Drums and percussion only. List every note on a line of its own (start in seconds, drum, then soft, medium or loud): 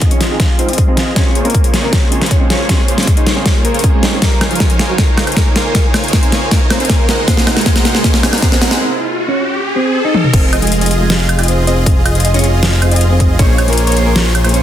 0.01 kick medium
0.01 closed hi-hat medium
0.11 closed hi-hat medium
0.21 snare medium
0.21 closed hi-hat medium
0.40 kick loud
0.40 snare medium
0.40 closed hi-hat medium
0.59 closed hi-hat medium
0.69 closed hi-hat soft
0.73 closed hi-hat medium
0.78 kick medium
0.78 closed hi-hat medium
0.97 snare medium
0.97 closed hi-hat medium
1.16 kick medium
1.16 snare medium
1.16 closed hi-hat medium
1.35 closed hi-hat medium
1.45 closed hi-hat soft
1.50 closed hi-hat medium
1.55 kick loud
1.55 closed hi-hat medium
1.64 closed hi-hat medium
1.74 snare medium
1.74 closed hi-hat medium
1.93 kick medium
1.93 snare medium
1.93 closed hi-hat medium
2.12 closed hi-hat medium
2.22 snare medium
2.22 closed hi-hat soft
2.26 closed hi-hat medium
2.31 kick medium
2.31 closed hi-hat medium
2.50 snare medium
2.50 closed hi-hat medium
2.69 kick medium
2.69 snare medium
2.69 closed hi-hat medium
2.88 closed hi-hat medium
2.98 snare medium
2.98 closed hi-hat soft
3.03 closed hi-hat medium
3.07 kick loud
3.07 closed hi-hat medium
3.17 closed hi-hat medium
3.27 snare medium
3.27 closed hi-hat medium
3.46 kick loud
3.46 snare medium
3.46 closed hi-hat medium
3.65 closed hi-hat medium
3.74 closed hi-hat soft
3.79 closed hi-hat medium
3.84 kick loud
3.84 closed hi-hat medium
4.03 snare medium
4.03 closed hi-hat medium
4.22 kick medium
4.22 snare medium
4.22 closed hi-hat medium
4.41 snare medium
4.41 closed hi-hat medium
4.41 high woodblock medium
4.51 closed hi-hat soft
4.55 closed hi-hat medium
4.60 kick loud
4.60 snare medium
4.60 closed hi-hat medium
4.70 closed hi-hat medium
4.79 snare medium
4.79 closed hi-hat medium
4.98 kick loud
4.98 snare medium
4.98 closed hi-hat medium
5.17 snare medium
5.17 closed hi-hat medium
5.17 high woodblock medium
5.27 closed hi-hat soft
5.27 high woodblock medium
5.32 closed hi-hat medium
5.37 kick loud
5.37 snare medium
5.37 closed hi-hat medium
5.56 snare medium
5.56 closed hi-hat medium
5.75 kick medium
5.75 snare medium
5.75 closed hi-hat medium
5.94 snare medium
5.94 closed hi-hat medium
5.94 high woodblock medium
6.04 closed hi-hat soft
6.08 closed hi-hat medium
6.13 kick loud
6.13 snare medium
6.13 closed hi-hat medium
6.23 closed hi-hat medium
6.32 snare medium
6.32 closed hi-hat medium
6.51 kick loud
6.51 snare medium
6.51 closed hi-hat medium
6.70 snare medium
6.70 closed hi-hat medium
6.70 high woodblock medium
6.80 closed hi-hat soft
6.85 closed hi-hat medium
6.90 kick loud
6.90 snare medium
6.90 closed hi-hat medium
7.09 snare medium
7.09 closed hi-hat medium
7.28 kick loud
7.28 snare medium
7.28 closed hi-hat medium
7.37 snare medium
7.47 snare medium
7.47 closed hi-hat medium
7.47 high woodblock medium
7.57 snare medium
7.57 closed hi-hat soft
7.61 closed hi-hat medium
7.66 kick loud
7.66 snare loud
7.66 closed hi-hat medium
7.76 snare medium
7.76 closed hi-hat medium
7.85 snare medium
7.85 closed hi-hat medium
7.95 snare medium
8.04 kick loud
8.04 snare loud
8.04 closed hi-hat medium
8.14 snare medium
8.23 snare loud
8.23 closed hi-hat medium
8.23 high woodblock medium
8.33 snare medium
8.33 closed hi-hat medium
8.33 high woodblock medium
8.38 closed hi-hat medium
8.42 kick loud
8.42 snare loud
8.42 closed hi-hat medium
8.52 snare medium
8.62 snare loud
8.62 closed hi-hat medium
8.71 snare medium
10.14 high tom medium
10.24 mid tom medium
10.33 kick loud
10.33 closed hi-hat medium
10.33 crash loud
10.53 closed hi-hat medium
10.53 high woodblock medium
10.62 closed hi-hat medium
10.67 closed hi-hat medium
10.72 closed hi-hat medium
10.81 closed hi-hat medium
10.86 closed hi-hat medium
10.91 closed hi-hat medium
11.10 snare loud
11.10 closed hi-hat medium
11.29 closed hi-hat medium
11.29 high woodblock medium
11.39 closed hi-hat medium
11.39 high woodblock medium
11.43 closed hi-hat medium
11.48 closed hi-hat medium
11.67 closed hi-hat medium
11.86 kick loud
11.86 closed hi-hat medium
12.06 closed hi-hat medium
12.06 high woodblock medium
12.15 closed hi-hat medium
12.20 closed hi-hat medium
12.25 closed hi-hat medium
12.34 closed hi-hat soft
12.39 closed hi-hat medium
12.44 closed hi-hat medium
12.63 snare loud
12.63 closed hi-hat medium
12.82 closed hi-hat medium
12.82 high woodblock medium
12.91 closed hi-hat medium
12.96 closed hi-hat medium
13.01 closed hi-hat medium
13.20 kick medium
13.20 closed hi-hat medium
13.39 kick loud
13.39 closed hi-hat medium
13.58 closed hi-hat medium
13.58 high woodblock medium
13.68 closed hi-hat soft
13.73 closed hi-hat medium
13.78 closed hi-hat medium
13.87 closed hi-hat soft
13.92 closed hi-hat medium
13.97 closed hi-hat medium
14.16 snare loud
14.16 closed hi-hat medium
14.35 closed hi-hat medium
14.35 high woodblock medium
14.44 closed hi-hat soft
14.44 high woodblock medium
14.49 closed hi-hat medium
14.54 closed hi-hat medium